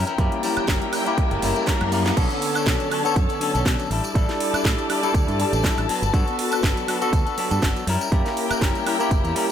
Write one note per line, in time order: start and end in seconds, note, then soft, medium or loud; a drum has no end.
0.00 2.15 E4 medium
0.00 2.15 A#4 medium
0.00 2.15 G5 loud
0.00 riser medium
0.07 0.18 C#4 medium
0.07 0.18 E4 medium
0.07 0.18 A#4 medium
0.07 closed hi-hat soft
0.07 tambourine medium
0.18 0.27 F#2 medium
0.18 0.41 G3 medium
0.18 1.03 A#3 medium
0.18 0.42 C#4 medium
0.18 1.03 E4 medium
0.18 0.43 E4 loud
0.18 1.04 G4 medium
0.18 0.44 A#4 medium
0.18 kick loud
0.18 closed hi-hat medium
0.18 tambourine soft
0.32 closed hi-hat soft
0.42 0.66 G3 medium
0.42 0.67 C#4 medium
0.42 0.68 E4 medium
0.42 0.68 A#4 medium
0.42 open hi-hat loud
0.42 tambourine medium
0.57 muted fingered electric bass stroke soft
0.57 closed hi-hat soft
0.57 tambourine medium
0.57 high woodblock medium
0.68 0.77 F#1 medium
0.68 0.82 G3 medium
0.68 0.82 C#4 medium
0.68 0.81 E4 medium
0.68 0.80 A#4 loud
0.68 kick loud
0.68 snare loud
0.68 closed hi-hat medium
0.68 tambourine soft
0.81 1.07 C#4 medium
0.81 1.06 E4 medium
0.81 1.04 A#4 medium
0.81 closed hi-hat soft
0.93 open hi-hat medium
0.93 tambourine medium
0.93 high woodblock medium
1.06 2.14 A#3 medium
1.06 1.32 C#4 medium
1.06 2.15 E4 medium
1.06 1.31 E4 medium
1.06 2.15 G4 medium
1.06 1.29 A#4 medium
1.06 closed hi-hat soft
1.06 tambourine medium
1.18 kick loud
1.18 closed hi-hat medium
1.18 tambourine soft
1.31 1.38 F#1 medium
1.31 1.42 C#4 medium
1.31 1.42 E4 medium
1.31 1.42 A#4 medium
1.31 closed hi-hat soft
1.42 1.51 F#1 medium
1.42 1.66 G3 medium
1.42 1.66 C#4 medium
1.42 1.67 E4 medium
1.42 1.68 A#4 medium
1.42 open hi-hat loud
1.42 tambourine medium
1.56 closed hi-hat soft
1.56 tambourine medium
1.67 1.90 G3 medium
1.67 1.91 C#4 loud
1.67 1.92 E4 loud
1.67 1.93 A#4 loud
1.67 kick loud
1.67 snare loud
1.67 closed hi-hat medium
1.81 2.10 F#2 loud
1.81 closed hi-hat soft
1.81 high woodblock medium
1.91 2.05 G3 medium
1.91 2.06 C#4 medium
1.91 2.05 E4 medium
1.91 2.04 A#4 medium
1.91 open hi-hat medium
1.91 tambourine medium
2.05 2.16 C#4 soft
2.05 2.17 E4 medium
2.05 2.17 A#4 medium
2.05 snare medium
2.05 closed hi-hat soft
2.05 tambourine soft
2.16 2.26 B1 medium
2.16 3.01 D3 medium
2.16 3.89 D3 medium
2.16 2.30 F#3 medium
2.16 3.02 B3 medium
2.16 2.31 C#4 medium
2.16 2.30 D4 medium
2.16 3.02 A4 medium
2.16 2.29 A4 medium
2.16 3.89 C#5 medium
2.16 3.02 C#5 medium
2.16 3.89 A5 medium
2.16 kick loud
2.16 closed hi-hat medium
2.16 crash loud
2.16 tambourine medium
2.30 2.56 C#4 medium
2.30 2.55 D4 medium
2.30 2.53 A4 medium
2.30 closed hi-hat soft
2.30 tambourine soft
2.42 open hi-hat loud
2.54 2.66 C#4 medium
2.54 2.66 D4 medium
2.54 2.66 A4 medium
2.54 closed hi-hat soft
2.54 tambourine medium
2.54 high woodblock medium
2.66 2.75 B2 medium
2.66 2.89 F#3 medium
2.66 2.91 C#4 loud
2.66 2.91 D4 medium
2.66 2.92 A4 loud
2.66 kick loud
2.66 snare loud
2.66 closed hi-hat medium
2.80 closed hi-hat soft
2.80 tambourine soft
2.91 3.05 F#3 medium
2.91 3.05 C#4 medium
2.91 3.05 D4 medium
2.91 3.03 A4 medium
2.91 open hi-hat medium
2.91 high woodblock medium
3.04 3.89 D3 medium
3.04 3.89 B3 medium
3.04 3.30 C#4 medium
3.04 3.29 D4 medium
3.04 3.28 A4 medium
3.04 3.89 A4 medium
3.04 3.89 C#5 medium
3.04 closed hi-hat soft
3.04 tambourine medium
3.16 3.25 F#2 medium
3.16 kick loud
3.16 closed hi-hat medium
3.29 3.40 C#4 medium
3.29 3.41 D4 medium
3.29 3.41 A4 medium
3.29 closed hi-hat soft
3.29 tambourine soft
3.40 3.54 F#3 medium
3.40 3.55 C#4 medium
3.40 3.54 D4 medium
3.40 3.53 A4 medium
3.40 open hi-hat loud
3.54 3.62 B1 medium
3.54 3.65 C#4 medium
3.54 3.65 D4 medium
3.54 3.65 A4 medium
3.54 closed hi-hat soft
3.54 tambourine medium
3.65 3.74 B2 loud
3.65 3.90 F#3 medium
3.65 3.91 C#4 medium
3.65 3.90 D4 loud
3.65 3.91 A4 loud
3.65 kick loud
3.65 snare loud
3.65 closed hi-hat medium
3.65 tambourine medium
3.79 closed hi-hat soft
3.79 tambourine soft
3.90 3.99 A1 medium
3.90 4.14 G3 medium
3.90 4.15 D4 medium
3.90 4.15 E4 medium
3.90 5.87 G4 medium
3.90 4.16 A4 medium
3.90 5.87 D5 medium
3.90 7.83 A5 medium
3.90 open hi-hat medium
4.04 closed hi-hat soft
4.04 tambourine medium
4.14 4.24 A1 loud
4.14 4.99 G3 medium
4.14 4.29 G3 medium
4.14 5.00 D4 medium
4.14 4.29 D4 medium
4.14 5.00 E4 medium
4.14 4.29 E4 medium
4.14 5.00 A4 medium
4.14 4.27 A4 medium
4.14 kick loud
4.14 closed hi-hat medium
4.29 4.55 D4 medium
4.29 4.54 E4 medium
4.29 4.52 A4 medium
4.29 snare soft
4.29 closed hi-hat soft
4.29 tambourine soft
4.40 open hi-hat loud
4.53 4.64 D4 medium
4.53 4.65 E4 medium
4.53 4.65 A4 medium
4.53 muted fingered electric bass stroke soft
4.53 closed hi-hat soft
4.53 tambourine medium
4.53 high woodblock medium
4.64 4.73 A2 medium
4.64 4.88 G3 medium
4.64 4.89 D4 medium
4.64 4.90 E4 loud
4.64 4.90 A4 loud
4.64 kick loud
4.64 snare loud
4.64 closed hi-hat medium
4.79 closed hi-hat soft
4.79 tambourine soft
4.89 5.03 G3 medium
4.89 5.04 D4 medium
4.89 5.03 E4 medium
4.89 5.01 A4 medium
4.89 open hi-hat medium
4.89 high woodblock medium
5.03 5.87 G3 medium
5.03 5.87 D4 medium
5.03 5.29 D4 medium
5.03 5.88 E4 medium
5.03 5.28 E4 medium
5.03 5.26 A4 medium
5.03 5.88 A4 medium
5.03 closed hi-hat soft
5.03 tambourine medium
5.14 5.23 D2 medium
5.14 kick loud
5.14 closed hi-hat medium
5.14 tambourine medium
5.27 5.43 G2 loud
5.27 5.39 D4 medium
5.27 5.39 E4 medium
5.27 5.39 A4 medium
5.27 closed hi-hat soft
5.27 tambourine soft
5.39 5.53 G3 medium
5.39 5.53 D4 medium
5.39 5.52 E4 medium
5.39 5.51 A4 medium
5.39 open hi-hat loud
5.52 5.67 A1 loud
5.52 5.63 D4 medium
5.52 5.64 E4 medium
5.52 5.64 A4 medium
5.52 closed hi-hat soft
5.52 tambourine medium
5.63 5.88 G3 medium
5.63 5.89 D4 medium
5.63 5.89 E4 loud
5.63 5.90 A4 loud
5.63 kick loud
5.63 snare loud
5.63 closed hi-hat medium
5.63 tambourine medium
5.77 5.85 A1 loud
5.77 closed hi-hat soft
5.77 tambourine soft
5.77 high woodblock medium
5.88 6.02 F#3 medium
5.88 6.03 B3 medium
5.88 6.02 D4 medium
5.88 7.85 F#4 medium
5.88 6.01 A4 medium
5.88 7.85 B4 medium
5.88 open hi-hat loud
6.02 6.09 G1 medium
6.02 6.13 B3 soft
6.02 6.13 D4 soft
6.02 6.13 A4 medium
6.02 closed hi-hat soft
6.02 tambourine medium
6.13 6.22 G2 loud
6.13 6.27 F#3 medium
6.13 6.98 B3 medium
6.13 6.27 B3 medium
6.13 6.27 D4 medium
6.13 6.99 F#4 medium
6.13 6.99 A4 medium
6.13 6.25 A4 medium
6.13 kick loud
6.13 closed hi-hat medium
6.13 tambourine medium
6.27 6.53 B3 medium
6.27 6.52 D4 medium
6.27 6.50 A4 medium
6.27 closed hi-hat soft
6.27 tambourine soft
6.39 open hi-hat loud
6.51 6.62 B3 medium
6.51 6.63 D4 medium
6.51 6.63 A4 medium
6.51 closed hi-hat soft
6.51 tambourine medium
6.51 high woodblock medium
6.63 6.72 G1 medium
6.63 6.86 F#3 loud
6.63 6.87 B3 medium
6.63 6.88 D4 medium
6.63 6.89 A4 loud
6.63 kick loud
6.63 snare loud
6.63 closed hi-hat medium
6.63 tambourine medium
6.77 closed hi-hat soft
6.77 tambourine soft
6.87 7.01 F#3 medium
6.87 7.02 B3 medium
6.87 7.01 D4 medium
6.87 7.00 A4 medium
6.87 open hi-hat loud
6.87 high woodblock medium
7.01 7.86 B3 medium
7.01 7.27 B3 medium
7.01 7.26 D4 medium
7.01 7.86 F#4 medium
7.01 7.24 A4 medium
7.01 7.86 A4 medium
7.01 closed hi-hat soft
7.01 tambourine medium
7.13 7.21 D2 medium
7.13 kick loud
7.13 closed hi-hat medium
7.13 tambourine medium
7.26 7.37 B3 soft
7.26 7.38 D4 medium
7.26 7.37 A4 medium
7.26 closed hi-hat soft
7.26 tambourine soft
7.37 7.51 F#3 medium
7.37 7.52 B3 medium
7.37 7.51 D4 medium
7.37 7.49 A4 medium
7.37 open hi-hat loud
7.51 7.58 G2 medium
7.51 7.62 B3 soft
7.51 7.62 D4 medium
7.51 7.62 A4 medium
7.51 closed hi-hat soft
7.51 tambourine medium
7.62 7.71 G1 loud
7.62 7.86 F#3 loud
7.62 7.87 B3 loud
7.62 7.88 D4 medium
7.62 7.88 A4 loud
7.62 kick loud
7.62 snare loud
7.62 closed hi-hat medium
7.62 tambourine medium
7.76 closed hi-hat soft
7.76 tambourine soft
7.87 7.96 F#2 medium
7.87 8.10 G3 medium
7.87 8.11 C#4 medium
7.87 9.52 E4 medium
7.87 8.12 E4 medium
7.87 9.52 A#4 medium
7.87 8.12 A#4 medium
7.87 9.52 G5 loud
7.87 open hi-hat loud
8.01 closed hi-hat soft
8.01 tambourine medium
8.12 8.20 F#2 medium
8.12 8.97 A#3 medium
8.12 8.26 C#4 medium
8.12 8.97 E4 medium
8.12 8.25 E4 medium
8.12 8.97 G4 medium
8.12 8.23 A#4 medium
8.12 kick loud
8.12 closed hi-hat medium
8.25 8.51 C#4 medium
8.25 8.50 E4 medium
8.25 8.48 A#4 medium
8.25 snare soft
8.25 closed hi-hat soft
8.25 tambourine soft
8.37 open hi-hat loud
8.49 8.60 C#4 medium
8.49 8.61 E4 medium
8.49 8.61 A#4 medium
8.49 muted fingered electric bass stroke soft
8.49 closed hi-hat soft
8.49 tambourine medium
8.49 high woodblock medium
8.61 8.70 F#1 medium
8.61 8.84 G3 medium
8.61 8.85 C#4 medium
8.61 8.86 E4 medium
8.61 8.87 A#4 medium
8.61 kick loud
8.61 snare loud
8.61 closed hi-hat medium
8.75 closed hi-hat soft
8.75 tambourine soft
8.85 9.00 G3 medium
8.85 9.00 C#4 medium
8.85 8.99 E4 medium
8.85 8.98 A#4 medium
8.85 open hi-hat loud
8.85 high woodblock medium
8.99 9.52 A#3 medium
8.99 9.25 C#4 medium
8.99 9.52 E4 medium
8.99 9.24 E4 medium
8.99 9.52 G4 medium
8.99 9.22 A#4 medium
8.99 closed hi-hat soft
8.99 tambourine medium
9.11 9.20 F#1 medium
9.11 kick loud
9.11 closed hi-hat medium
9.11 tambourine medium
9.24 9.31 E2 medium
9.24 9.35 C#4 medium
9.24 9.35 E4 medium
9.24 9.35 A#4 medium
9.24 closed hi-hat soft
9.24 tambourine soft
9.35 9.49 G3 medium
9.35 9.50 C#4 medium
9.35 9.49 E4 medium
9.35 9.47 A#4 medium
9.35 open hi-hat loud